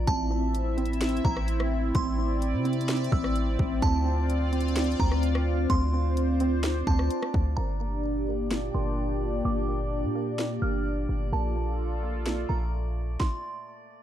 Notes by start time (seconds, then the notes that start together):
Already playing: A3
0.07 A1 C4 E4 E5 A5, kick, closed hi-hat
0.31 C4
0.55 closed hi-hat
0.77 C4, closed hi-hat
0.86 closed hi-hat
0.93 closed hi-hat
1.01 C4, snare, closed hi-hat
1.09 closed hi-hat
1.17 closed hi-hat
1.24 A1 C4 A#5, kick
1.37 cross-stick
1.48 closed hi-hat
1.60 cross-stick
1.95 A1 C4 D5 C6, kick, closed hi-hat
2.18 C4
2.42 closed hi-hat
2.54 C3
2.65 C4, closed hi-hat
2.73 closed hi-hat
2.81 closed hi-hat
2.89 C4, snare, closed hi-hat
2.97 closed hi-hat
3.04 closed hi-hat
3.12 A1 C4 E6, kick
3.24 cross-stick
3.36 closed hi-hat
3.59 A1, kick
3.82 D2 C4 D4 F4 C5 D5 F5 A5, kick, closed hi-hat
4.05 C4
4.30 closed hi-hat
4.53 C4, closed hi-hat
4.61 closed hi-hat
4.68 closed hi-hat
4.76 C4, snare, closed hi-hat
4.84 closed hi-hat
4.92 closed hi-hat
5.00 D2 C4 A#5, kick
5.12 cross-stick
5.23 closed hi-hat
5.35 cross-stick
5.70 D2 C4 C5 D5 C6, kick, closed hi-hat
5.93 C4
6.17 closed hi-hat
6.40 C4, closed hi-hat
6.64 C4, snare, closed hi-hat
6.87 D2 C4 A5, kick
6.99 cross-stick
7.11 closed hi-hat
7.22 cross-stick
7.34 D2, kick
7.57 G1 A#2 A#3 D4 G4 D5 A#5
7.81 A#3
8.28 A#3
8.51 A#3, snare
8.74 G1 A#3 C6
9.45 G1 A#3 D6
9.68 A#3
10.04 A#2
10.15 A#3
10.39 A#3, snare
10.62 G1 A#3 F6
11.09 G1
11.32 A#1 A3 A#3 F4 A4 A5
11.56 A#3
12.03 A#3
12.26 A#3, snare
12.49 A#1 A#3 A#5
13.20 C6, kick, snare